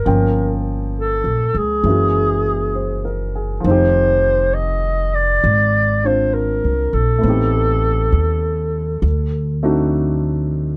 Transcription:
Already playing: clarinet A#4
0.05 upright bass G1, grand piano F3 A#3 C#4 G5
0.99 clarinet A4
1.24 upright bass A#1
1.54 upright bass C#2, clarinet G#4
1.84 upright bass F#1, grand piano E3 G#3 A#3
1.89 grand piano C#4 F#4
2.75 grand piano C5
3.05 grand piano A#4
3.35 grand piano G#4
3.60 grand piano D#3 F3
3.64 upright bass F1, grand piano C4 D#4, clarinet C5
3.71 grand piano G4
4.54 clarinet D#5
5.14 clarinet D5
5.44 upright bass G#1
6.04 grand piano C4 D4 F4 C5, clarinet C5
6.34 clarinet A#4
6.64 upright bass C2
6.93 upright bass A#1, clarinet A4
7.19 grand piano A3 B3
7.23 upright bass A1, grand piano C4 D#4
7.29 grand piano G4
8.12 upright bass D#2
9.02 upright bass D2
9.63 grand piano A3 C4 D4 D#4 F#4

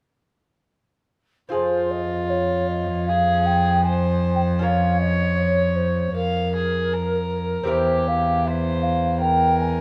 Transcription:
1.49 lute C4 F4 G#4, flute C5
1.53 lute F2, cello F2, violin F4
1.91 flute D#5
2.29 flute C#5
2.68 flute D#5
3.06 violin G#4, flute F5
3.46 flute G5
3.84 violin C5, flute G#5
4.35 flute G5
4.59 lute C#4 F4 A#4, flute F5
4.63 violin C#5
4.99 flute D#5
5.37 flute C#5
5.76 flute C5
6.14 flute A#4, violin F5
6.56 violin G#4
6.94 violin A#4
7.63 lute C4 G4 A#4
7.68 lute E2, cello E2, violin G4, flute C5
8.07 flute F5
8.45 violin C5, flute E5
8.82 flute F5
9.20 violin A#4, flute G5
9.59 flute G#5

